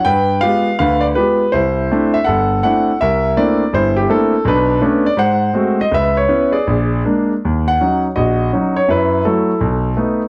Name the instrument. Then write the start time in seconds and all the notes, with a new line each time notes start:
grand piano
0.05 G2 B4 G5
0.41 G#3 B3 F4 G4 F5
0.79 D2 D3 B4 F5
1.01 D5
1.15 G#3 B3 F4 G4 B4
1.52 C2 E4 C5
1.91 A3 C4 D4 E4
2.14 E5
2.24 G1 A4 F#5
2.63 A3 C4 D4 E4 F#5
3.01 C2 A#4 E5
3.37 A3 A#3 C4 D4 E4 D5
3.73 G1 E4 C5
3.97 G4
4.09 A3 A#3 C4 D4 E4 A4
4.45 B1 D4 B4
4.82 A3 B3 C#4 D4
5.06 D5
5.17 G#2 C5 F#5
5.54 G#3 A3 C4 F#4
5.81 D#5
5.92 C#2 B4 E5
6.17 C#5
6.28 B3 C#4 E4
6.52 G#4 D5
6.67 A#1
7.05 G#3 A#3 D4
7.45 D#2
7.68 F#5
7.81 F#3 C#4 D#4
8.16 A#1 F#4 D#5
8.53 F#3 C#4 D#4
8.76 C#5
8.88 F#2 E4 B4
9.25 F#3 A3 E4 A4
9.61 B1
9.97 A3 B3 D#4